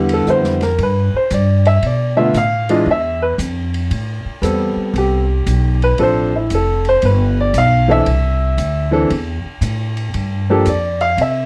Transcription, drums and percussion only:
0.09 ride medium
0.27 hi-hat pedal medium
0.44 snare soft
0.61 snare soft
0.61 ride soft
0.78 ride medium
1.31 hi-hat pedal medium
1.31 ride medium
1.65 ride soft
1.83 ride medium
2.34 hi-hat pedal medium
2.34 ride medium
2.69 ride medium
3.39 hi-hat pedal medium
3.39 ride medium
3.74 ride soft
3.91 ride medium
4.43 hi-hat pedal medium
4.43 ride medium
4.96 ride medium
5.47 hi-hat pedal soft
5.47 ride medium
5.82 ride soft
5.98 ride medium
6.50 hi-hat pedal medium
6.50 ride medium
6.85 ride soft
7.02 ride medium
7.54 hi-hat pedal medium
7.54 ride medium
8.06 ride medium
8.58 hi-hat pedal medium
8.58 ride medium
9.10 ride medium
9.62 hi-hat pedal soft
9.62 ride medium
9.97 ride soft
10.14 ride medium
10.66 hi-hat pedal medium
10.66 ride medium
11.01 ride soft
11.18 ride medium

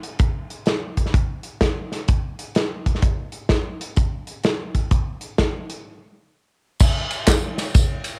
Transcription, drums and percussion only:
0.03 closed hi-hat medium
0.19 kick loud
0.19 closed hi-hat medium
0.50 closed hi-hat medium
0.66 snare medium
0.66 closed hi-hat medium
0.97 kick medium
0.97 closed hi-hat medium
1.06 snare soft
1.14 kick medium
1.14 closed hi-hat medium
1.43 closed hi-hat medium
1.61 kick medium
1.61 snare medium
1.61 closed hi-hat medium
1.92 snare soft
1.92 closed hi-hat medium
2.08 kick loud
2.08 closed hi-hat medium
2.39 closed hi-hat medium
2.55 snare medium
2.55 closed hi-hat medium
2.86 kick medium
2.86 closed hi-hat medium
2.95 snare soft
3.02 kick medium
3.02 closed hi-hat medium
3.32 closed hi-hat medium
3.49 kick medium
3.49 snare medium
3.49 closed hi-hat medium
3.81 closed hi-hat medium
3.96 kick medium
3.96 closed hi-hat medium
4.27 closed hi-hat medium
4.43 snare medium
4.43 closed hi-hat medium
4.75 kick medium
4.75 closed hi-hat medium
4.91 kick medium
4.91 closed hi-hat medium
5.21 closed hi-hat medium
5.38 kick medium
5.38 snare loud
5.38 closed hi-hat medium
5.70 closed hi-hat medium
6.80 kick loud
6.80 crash loud
6.80 tambourine medium
7.11 ride medium
7.11 tambourine medium
7.27 kick medium
7.27 snare loud
7.27 clap loud
7.27 ride medium
7.27 tambourine loud
7.58 snare soft
7.58 ride medium
7.58 tambourine medium
7.74 kick loud
7.74 ride medium
7.74 tambourine medium
8.04 ride medium
8.04 tambourine medium

